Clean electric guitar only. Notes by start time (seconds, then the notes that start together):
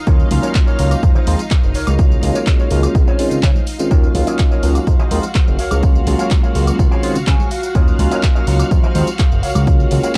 0.07 D#4 F#4 A#4 C#5
0.43 D#4 F#4 A#4 C#5
0.67 D#4 F#4 A#4 C#5
1.15 D#4 F4 G#4 C5
1.50 D#4 F4 G#4 C5
1.75 F4 F#4 A#4 C#5
2.35 F4 F#4 A#4 C#5
2.59 F4 F#4 A#4 C#5
3.08 F4 G#4 C5 C#5
3.43 F4 G#4 C5 C#5
3.79 muted clean electric guitar stroke
3.91 F#4 A#4 C#5 D#5
4.27 F#4 A#4 C#5 D#5
4.51 F#4 A#4 C#5 D#5
4.99 F4 G#4 C5 D#5
5.35 F4 G#4 C5 D#5
5.59 F#4 A#4 C#5 F5
6.19 F#4 A#4 C#5 F5
6.43 F#4 A#4 C#5 F5
6.91 G#4 C5 C#5 F5
7.27 G#4 C5 C#5 F5 G#5
7.51 F5
7.64 muted clean electric guitar stroke
7.75 F#4 A#4 C#5 D#5
8.11 F#4 A#4 C#5 D#5
8.35 F#4 A#4 C#5 D#5
8.83 F4 G#4 C5 D#5
9.19 F4 G#4 C5 F5
9.43 F#4 A#4 C#5 F5
10.04 F#4 A#4 C#5 F5